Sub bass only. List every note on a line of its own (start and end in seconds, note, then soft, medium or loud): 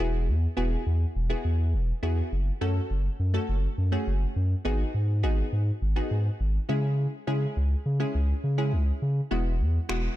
0.00 0.30 E1 loud
0.28 0.47 E2 loud
0.57 0.76 E1 loud
0.86 1.05 E2 loud
1.15 1.34 E1 loud
1.45 1.75 E2 medium
1.74 1.93 E1 loud
2.03 2.22 E2 loud
2.32 2.51 F#1 loud
2.61 2.80 F#2 loud
2.90 3.09 F#1 medium
3.19 3.38 F#2 medium
3.49 3.68 F#1 loud
3.78 3.97 F#2 medium
4.07 4.26 F#1 loud
4.36 4.55 F#2 medium
4.65 4.84 G#1 loud
4.94 5.25 G#2 loud
5.23 5.42 G#1 loud
5.52 5.71 G#2 loud
5.82 6.01 G#1 loud
6.11 6.30 G#2 loud
6.40 6.59 G#1 loud
6.69 7.07 C#3 loud
7.28 7.46 C#3 loud
7.57 7.75 C#2 loud
7.86 8.05 C#3 loud
8.15 8.34 C#2 loud
8.44 8.74 C#3 loud
8.73 8.92 C#2 loud
9.02 9.21 C#3 loud
9.31 9.62 E1 loud
9.60 9.79 E2 loud
9.89 10.08 E1 loud